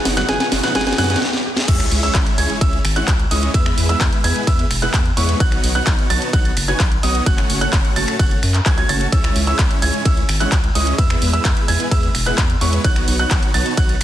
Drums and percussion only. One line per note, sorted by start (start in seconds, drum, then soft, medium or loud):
0.05 snare loud
0.05 open hi-hat loud
0.17 snare medium
0.17 closed hi-hat soft
0.29 kick loud
0.29 snare medium
0.29 closed hi-hat medium
0.40 snare medium
0.40 closed hi-hat soft
0.52 snare loud
0.52 open hi-hat loud
0.64 snare medium
0.64 closed hi-hat soft
0.75 kick loud
0.75 snare loud
0.75 closed hi-hat soft
0.81 snare medium
0.87 snare medium
0.87 closed hi-hat soft
0.93 snare medium
0.98 snare loud
0.98 open hi-hat loud
1.04 snare medium
1.10 snare medium
1.10 closed hi-hat medium
1.16 snare loud
1.22 snare medium
1.33 snare medium
1.57 snare medium
1.68 kick loud
1.68 closed hi-hat medium
1.68 crash loud
1.68 ride medium
1.80 finger snap medium
1.80 closed hi-hat soft
1.92 open hi-hat loud
2.03 closed hi-hat soft
2.15 kick loud
2.15 clap loud
2.15 closed hi-hat medium
2.15 ride medium
2.26 closed hi-hat soft
2.38 open hi-hat loud
2.50 closed hi-hat soft
2.61 kick loud
2.61 closed hi-hat medium
2.61 ride medium
2.73 closed hi-hat soft
2.85 finger snap medium
2.85 open hi-hat loud
2.96 closed hi-hat soft
3.08 kick loud
3.08 clap loud
3.08 closed hi-hat medium
3.08 ride medium
3.20 closed hi-hat soft
3.31 open hi-hat loud
3.43 closed hi-hat soft
3.54 kick loud
3.54 closed hi-hat medium
3.54 ride medium
3.66 finger snap medium
3.66 closed hi-hat soft
3.78 open hi-hat loud
3.89 closed hi-hat soft
4.01 kick loud
4.01 clap loud
4.01 closed hi-hat medium
4.01 ride medium
4.13 closed hi-hat soft
4.24 open hi-hat loud
4.36 closed hi-hat soft
4.47 kick loud
4.47 open hi-hat medium
4.47 ride medium
4.59 closed hi-hat soft
4.71 finger snap medium
4.71 open hi-hat loud
4.82 closed hi-hat soft
4.94 kick loud
4.94 clap loud
4.94 closed hi-hat medium
4.94 ride medium
5.06 closed hi-hat soft
5.17 open hi-hat loud
5.29 closed hi-hat soft
5.40 kick loud
5.40 closed hi-hat medium
5.40 ride medium
5.52 finger snap medium
5.52 closed hi-hat soft
5.64 open hi-hat loud
5.75 closed hi-hat soft
5.87 kick loud
5.87 clap loud
5.87 closed hi-hat medium
5.87 ride medium
5.99 closed hi-hat soft
6.10 open hi-hat loud
6.22 closed hi-hat soft
6.33 kick loud
6.33 closed hi-hat medium
6.33 ride medium
6.45 closed hi-hat soft
6.57 finger snap medium
6.57 open hi-hat loud
6.68 closed hi-hat soft
6.80 kick loud
6.80 clap loud
6.80 closed hi-hat medium
6.80 ride medium
6.92 closed hi-hat soft
7.03 open hi-hat loud
7.15 closed hi-hat soft
7.26 kick loud
7.26 closed hi-hat medium
7.26 ride medium
7.38 finger snap medium
7.38 clap soft
7.38 closed hi-hat soft
7.50 open hi-hat loud
7.61 closed hi-hat soft
7.73 kick loud
7.73 clap loud
7.73 closed hi-hat medium
7.73 ride medium
7.85 closed hi-hat soft
7.96 open hi-hat loud
8.08 finger snap medium
8.08 closed hi-hat soft
8.19 kick loud
8.19 open hi-hat medium
8.19 ride medium
8.31 closed hi-hat soft
8.43 finger snap medium
8.43 open hi-hat loud
8.54 clap soft
8.54 closed hi-hat soft
8.66 kick loud
8.66 clap loud
8.66 closed hi-hat medium
8.66 ride medium
8.78 closed hi-hat soft
8.89 open hi-hat loud
9.01 closed hi-hat soft
9.12 kick loud
9.12 closed hi-hat medium
9.12 ride medium
9.24 finger snap medium
9.24 closed hi-hat soft
9.36 open hi-hat loud
9.47 closed hi-hat soft
9.59 kick loud
9.59 clap loud
9.59 closed hi-hat medium
9.59 ride medium
9.71 closed hi-hat soft
9.82 open hi-hat loud
9.94 closed hi-hat soft
10.05 kick loud
10.05 closed hi-hat medium
10.05 ride medium
10.17 closed hi-hat soft
10.29 finger snap medium
10.29 open hi-hat loud
10.40 closed hi-hat soft
10.52 kick loud
10.52 clap loud
10.52 closed hi-hat medium
10.52 ride medium
10.64 closed hi-hat soft
10.75 open hi-hat loud
10.87 closed hi-hat soft
10.98 kick loud
10.98 closed hi-hat medium
10.98 ride medium
11.10 finger snap medium
11.10 closed hi-hat soft
11.22 open hi-hat loud
11.33 closed hi-hat soft
11.45 kick loud
11.45 clap loud
11.45 closed hi-hat medium
11.45 ride medium
11.57 closed hi-hat soft
11.68 open hi-hat loud
11.80 closed hi-hat soft
11.91 kick loud
11.91 open hi-hat medium
11.91 ride medium
12.03 closed hi-hat soft
12.15 finger snap medium
12.15 open hi-hat loud
12.26 closed hi-hat soft
12.38 kick loud
12.38 clap loud
12.38 closed hi-hat medium
12.38 ride medium
12.50 closed hi-hat soft
12.61 open hi-hat loud
12.73 closed hi-hat soft
12.84 kick loud
12.84 closed hi-hat medium
12.84 ride medium
12.96 finger snap medium
12.96 closed hi-hat soft
13.08 open hi-hat loud
13.19 closed hi-hat soft
13.31 kick loud
13.31 clap loud
13.31 closed hi-hat medium
13.31 ride medium
13.43 closed hi-hat soft
13.54 open hi-hat loud
13.66 closed hi-hat soft
13.77 kick loud
13.77 closed hi-hat medium
13.77 ride medium
13.89 closed hi-hat soft